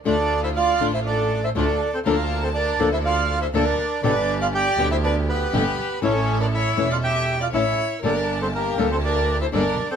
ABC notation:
X:1
M:4/4
L:1/16
Q:1/4=120
K:Gdor
V:1 name="Violin"
A3 c d3 c A3 c A3 A | F3 A B3 c d3 c B4 | =B3 d d3 c B2 G6 | A3 B ^c3 d e3 d c4 |
B3 A G3 A B3 c B3 A |]
V:2 name="Bandoneon"
[Dd]3 [Ee] [Ff]3 [Ee] [Dd]3 [Ee] [Dd]3 [Cc] | [B,B]3 [Cc] [Dd]3 [Ee] [Ff]3 [Ee] [Dd]4 | [Dd]3 [Ff] [Gg]3 [Ee] [Dd]2 [=B,=B]6 | [^C^c]3 [Dd] [Ee]3 [Ff] [Gg]3 [Ff] [Ee]4 |
[Dd]3 [Cc] [B,B]3 [Cc] [Dd]3 [Ee] [Dd]3 [Cc] |]
V:3 name="String section"
[A,DF]6 [A,DF]6 [A,DF]2 z2 | [B,Da]6 [B,DA]6 [B,DA]2 z2 | [=B,DG]6 [B,DG]6 [B,DG]2 z2 | [^CEA]6 [CEA]6 [CEA]2 z2 |
[B,Ga]6 [B,Ga]6 [B,GA]2 z2 |]
V:4 name="Nylon-string guitar"
[D,A,DF]2 z4 [D,A,DF]2 z4 [D,A,DF]2 z2 | [D,F,B,DA]2 z4 [D,F,B,DA]2 z4 [D,F,B,DA]2 z2 | [=B,,D,G,=B,G]2 z4 [B,,D,G,B,G]2 z4 [B,,D,G,B,G]2 z2 | [E,A,^CE]2 z4 [E,A,CE]2 z4 [E,A,CE]2 z2 |
[D,G,B,DA]2 z4 [D,G,B,DA]2 z4 [D,G,B,DA]2 z2 |]
V:5 name="Double bass" clef=bass
D,,6 A,,,6 D,,2 z2 | D,,6 D,,6 D,,2 z2 | G,,,6 D,,6 G,,,2 z2 | A,,,6 E,,,6 A,,,2 z2 |
G,,,6 D,,6 G,,,2 z2 |]